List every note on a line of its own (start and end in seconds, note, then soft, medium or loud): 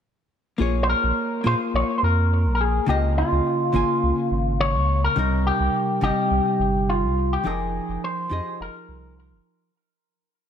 0.58 0.94 A#1 loud
0.58 1.41 A#3 medium
0.58 1.42 F4 medium
0.58 1.43 G#4 medium
0.58 1.43 C#5 medium
0.83 0.89 C5 medium
0.89 1.42 A#4 medium
1.03 1.12 A#1 loud
1.44 1.55 A#2 loud
1.44 2.84 A#3 medium
1.44 2.85 F4 medium
1.44 2.85 G#4 medium
1.44 1.54 C5 medium
1.44 2.86 F5 medium
1.74 1.83 A#1 medium
1.74 1.95 C#5 medium
1.98 2.04 C5 medium
2.02 2.47 F2 medium
2.02 2.54 A#4 medium
2.45 2.80 A#1 medium
2.55 2.61 A#4 medium
2.61 2.87 G#4 medium
2.86 3.23 C#2 medium
2.86 3.70 C#3 medium
2.86 3.70 A#3 medium
2.86 3.71 F4 medium
2.86 2.97 G4 loud
2.86 3.72 D#5 medium
3.18 4.65 F4 medium
3.32 3.40 C#2 loud
3.73 3.83 G#1 loud
3.73 5.13 C#3 medium
3.73 5.13 A#3 medium
3.73 5.14 F4 medium
3.73 5.15 G#5 medium
4.03 4.12 C#2 medium
4.31 4.76 G#1 medium
4.60 5.04 C#5 loud
4.74 5.08 C#2 loud
5.04 5.43 A#4 medium
5.16 5.51 C2 loud
5.16 5.99 C3 medium
5.16 5.99 G3 medium
5.16 6.00 D#4 medium
5.16 6.00 A#4 medium
5.47 5.99 G4 medium
5.60 5.69 C2 loud
6.01 6.12 G1 loud
6.01 7.41 C3 medium
6.01 7.42 G3 medium
6.01 7.43 D#4 medium
6.01 6.91 G4 medium
6.01 7.43 D#5 medium
6.31 6.40 C2 medium
6.59 7.04 G1 medium
6.89 7.34 F4 medium
7.03 7.37 C2 loud
7.33 7.47 G4 medium
7.44 7.80 F1 medium
7.44 8.27 F3 medium
7.44 8.27 D#4 medium
7.44 8.28 G#4 medium
7.44 8.03 G#4 medium
7.44 8.29 A#4 medium
7.44 8.28 G5 medium
7.89 7.97 F1 medium
8.04 8.61 C5 medium
8.29 8.40 F2 loud
8.29 9.70 F3 medium
8.29 9.70 D#4 medium
8.29 9.71 G4 medium
8.29 9.71 G#4 medium
8.29 9.72 D#5 medium
8.60 8.69 F1 medium
8.60 9.14 A#4 medium
8.88 9.33 C2 medium
9.32 9.40 F1 medium